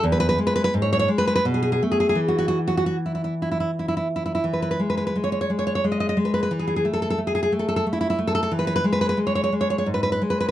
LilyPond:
\new Staff \with { instrumentName = "Nylon-string guitar" } { \time 3/4 \key e \major \tempo 4 = 87 << { r32 b'32 b'32 b'32 r32 b'32 b'32 b'32 r32 cis''32 cis''32 cis''32 r32 b'32 b'32 b'32 r32 gis'32 gis'32 gis'32 r32 gis'32 gis'32 gis'32 | r32 fis'32 fis'32 fis'32 r32 fis'32 fis'32 fis'32 r32 e'32 e'32 e'32 r32 e'32 e'32 e'32 r32 e'32 e'32 e'32 r32 e'32 e'32 e'32 | r32 b'32 b'32 b'32 r32 b'32 b'32 b'32 r32 cis''32 cis''32 cis''32 r32 cis''32 cis''32 cis''32 r32 dis''32 dis''32 dis''32 r32 b'32 b'32 b'32 | r32 gis'32 gis'32 gis'32 r32 a'32 a'32 a'32 r32 gis'32 gis'32 gis'32 r32 a'32 a'32 a'32 r32 e'32 e'32 e'32 r32 a'32 a'32 a'32 |
r32 b'32 b'32 b'32 r32 b'32 b'32 b'32 r32 cis''32 cis''32 cis''32 r32 cis''32 cis''32 cis''32 r32 b'32 b'32 b'32 r32 b'32 b'32 r32 | } \\ { e,8 gis8 gis,8 gis8 b,8 a8 | e2. | e8 gis8 gis8 gis8 gis8 gis8 | e8 a8 a8 a8 a8 a8 |
e8 gis8 gis8 gis8 gis,8 gis8 | } >> }